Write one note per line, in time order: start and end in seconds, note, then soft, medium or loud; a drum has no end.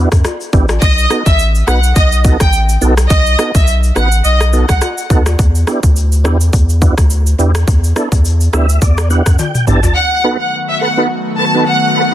0.12 0.23 F#2 medium
0.12 kick loud
0.12 cross-stick medium
0.12 shaker medium
0.25 cross-stick medium
0.25 high timbale medium
0.25 shaker medium
0.41 shaker medium
0.53 0.79 A1 medium
0.53 0.66 B3 medium
0.53 0.66 D4 medium
0.53 0.66 E4 medium
0.53 0.66 G4 loud
0.53 kick medium
0.53 shaker soft
0.69 cross-stick medium
0.69 high timbale medium
0.69 shaker medium
0.82 1.07 B1 loud
0.82 1.07 D#5 loud
0.82 kick loud
0.82 shaker medium
0.98 shaker medium
0.98 shaker soft
1.10 1.23 B3 medium
1.10 1.23 D#4 medium
1.10 1.23 F#4 medium
1.10 1.23 A4 medium
1.10 cross-stick medium
1.10 shaker medium
1.26 1.63 A1 medium
1.26 1.37 E5 medium
1.26 kick medium
1.26 shaker medium
1.39 shaker medium
1.55 shaker soft
1.67 1.93 B1 medium
1.67 1.80 B3 medium
1.67 1.80 D#4 medium
1.67 1.80 F#4 medium
1.67 1.80 B4 medium
1.67 1.81 F#5 medium
1.67 cross-stick medium
1.67 shaker soft
1.83 shaker medium
1.96 2.36 B1 loud
1.96 2.10 D#5 medium
1.96 kick medium
1.96 shaker medium
2.12 shaker soft
2.12 shaker medium
2.24 2.37 B3 medium
2.24 2.37 D#4 medium
2.24 2.37 F#4 medium
2.24 2.38 A4 medium
2.24 kick medium
2.24 shaker medium
2.24 shaker soft
2.40 2.77 A1 medium
2.40 2.52 G5 medium
2.40 kick loud
2.40 cross-stick medium
2.40 shaker medium
2.53 shaker medium
2.69 shaker medium
2.81 3.07 B1 medium
2.81 2.94 B3 medium
2.81 2.94 D#4 medium
2.81 2.95 F#4 medium
2.81 2.95 A4 loud
2.81 shaker soft
2.97 cross-stick loud
2.97 shaker medium
3.10 3.36 B1 loud
3.10 3.35 D#5 loud
3.10 kick loud
3.10 shaker medium
3.26 shaker medium
3.26 shaker soft
3.38 3.51 B3 medium
3.38 3.52 D#4 medium
3.38 3.52 F#4 medium
3.38 3.52 A4 medium
3.38 cross-stick medium
3.38 shaker medium
3.38 shaker soft
3.55 3.91 B1 medium
3.55 3.66 E5 medium
3.55 kick medium
3.55 shaker medium
3.67 shaker medium
3.83 shaker soft
3.83 shaker medium
3.96 4.22 A1 medium
3.96 4.09 B3 medium
3.96 4.09 D#4 medium
3.96 4.09 F#4 medium
3.96 4.09 B4 medium
3.96 4.10 F#5 medium
3.96 cross-stick medium
3.96 shaker soft
4.12 shaker medium
4.24 4.64 B1 medium
4.24 4.39 D#5 medium
4.24 shaker medium
4.41 cross-stick medium
4.41 shaker medium
4.41 shaker soft
4.53 4.66 B3 medium
4.53 4.66 D#4 medium
4.53 4.66 F#4 medium
4.53 4.66 A4 medium
4.53 shaker medium
4.53 shaker soft
4.69 4.80 C2 loud
4.69 4.80 F#5 medium
4.69 kick loud
4.69 cross-stick medium
4.69 shaker medium
4.81 cross-stick medium
4.81 high timbale medium
4.81 shaker medium
4.98 shaker medium
5.10 5.36 D#2 medium
5.10 5.23 B3 medium
5.10 5.23 D#4 medium
5.10 5.23 F#4 medium
5.10 5.23 A4 loud
5.10 kick medium
5.10 shaker soft
5.10 shaker medium
5.26 cross-stick loud
5.26 high timbale medium
5.26 shaker medium
5.39 5.64 E2 loud
5.39 kick loud
5.39 shaker medium
5.55 shaker soft
5.67 5.80 B3 medium
5.67 5.80 D4 medium
5.67 5.80 E4 medium
5.67 5.80 G4 loud
5.67 cross-stick medium
5.67 shaker medium
5.67 shaker soft
5.83 6.26 D2 medium
5.83 kick medium
5.83 shaker medium
5.96 shaker medium
6.12 shaker soft
6.12 shaker medium
6.24 6.50 E2 medium
6.24 6.37 B3 medium
6.24 6.37 D4 medium
6.24 6.37 E4 medium
6.24 6.38 G4 loud
6.24 cross-stick medium
6.24 shaker soft
6.41 shaker medium
6.53 6.93 E2 loud
6.53 kick medium
6.53 shaker medium
6.69 shaker soft
6.81 6.94 B3 medium
6.81 6.94 D4 medium
6.81 6.95 E4 medium
6.81 6.95 F#4 loud
6.81 kick medium
6.81 shaker medium
6.98 7.35 D2 medium
6.98 kick medium
6.98 cross-stick medium
6.98 shaker medium
7.10 shaker medium
7.26 shaker medium
7.39 7.64 E2 medium
7.39 7.52 B3 medium
7.39 7.52 D4 medium
7.39 7.52 E4 medium
7.39 7.52 G4 loud
7.39 shaker soft
7.55 cross-stick loud
7.55 shaker medium
7.68 7.93 E2 loud
7.68 kick loud
7.68 shaker medium
7.84 shaker medium
7.84 shaker soft
7.96 8.09 B3 medium
7.96 8.09 D4 medium
7.96 8.09 E4 medium
7.96 8.09 A4 loud
7.96 cross-stick medium
7.96 shaker medium
7.96 shaker soft
8.12 8.49 E2 medium
8.12 kick medium
8.12 shaker medium
8.25 shaker medium
8.41 shaker soft
8.41 shaker medium
8.53 8.79 D2 medium
8.53 8.66 B3 medium
8.53 8.66 D4 medium
8.53 8.66 E4 medium
8.53 8.66 G4 loud
8.53 8.80 E5 medium
8.53 cross-stick medium
8.53 shaker soft
8.69 shaker medium
8.82 9.21 E2 loud
8.82 9.08 D5 medium
8.82 kick medium
8.82 shaker medium
8.98 cross-stick loud
8.98 shaker soft
9.10 9.23 B3 medium
9.10 9.23 D4 medium
9.10 9.23 E4 medium
9.10 9.23 G4 loud
9.10 9.37 F#5 medium
9.10 shaker medium
9.26 9.38 F#2 medium
9.26 kick medium
9.26 cross-stick medium
9.26 shaker medium
9.39 9.65 G5 medium
9.39 high tom medium
9.39 high timbale medium
9.39 shaker medium
9.55 mid tom medium
9.55 shaker medium
9.67 9.93 A1 medium
9.67 9.80 B3 medium
9.67 9.80 D4 medium
9.67 9.80 E4 medium
9.67 9.80 G4 loud
9.67 9.94 A5 medium
9.67 mid tom medium
9.67 shaker soft
9.83 floor tom medium
9.83 high timbale medium
9.83 shaker medium
9.96 12.14 D#3 medium
9.96 12.14 F#3 medium
9.96 12.14 A3 medium
9.96 12.14 B3 medium
9.96 12.14 F#4 medium
9.96 10.21 F#5 loud
10.24 10.37 B3 medium
10.24 10.37 D#4 medium
10.24 10.37 F#4 medium
10.24 10.37 A4 medium
10.24 10.37 B4 medium
10.41 10.52 F#5 medium
10.69 10.80 E5 medium
10.81 10.88 A4 medium
10.81 10.88 B4 medium
10.81 10.96 F#5 medium
10.97 11.07 B3 medium
10.97 11.08 D#4 medium
10.97 11.08 F#4 medium
10.97 11.08 A4 medium
10.97 11.08 B4 medium
11.38 11.45 A4 medium
11.38 11.45 B4 medium
11.38 11.53 A5 medium
11.54 11.65 B3 medium
11.54 11.65 D#4 medium
11.54 11.65 F#4 medium
11.54 11.65 A4 medium
11.54 11.65 B4 medium
11.67 12.09 F#5 medium
11.95 12.02 A4 medium
11.95 12.02 B4 medium